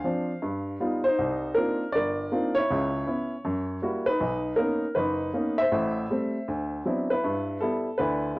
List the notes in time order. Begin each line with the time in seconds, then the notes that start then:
Already playing: C5 F5
0.04 F3 C4 D4
0.42 G2
0.80 G3 B3 D#4 F4
1.04 D#4 C5
1.19 C2
1.54 A#3 C4 D4 D#4 F4 A#4
1.92 G1 A#4 D5
2.32 A#3 C4 D4 D#4 F4
2.55 E4 C#5
2.70 C#2 C#3
3.06 B3 C#4 E4
3.45 F#2
3.82 G3 A#3 E4 F#4
4.06 D#4 B4
4.21 B1
4.56 A#3 B3 C#4 D#4 A#4
4.95 F#1 D#4 B4
5.34 A#3 B3 C#4 D#4
5.58 C5 E5
5.72 A1 A2
6.10 G3 A3 C4
6.48 D2
6.85 F#3 B3 C4 D4 E4
7.10 E4 B4
7.24 G2
7.60 G3 B3 E4 A4
7.98 D2 D3 E4 B4
8.36 G3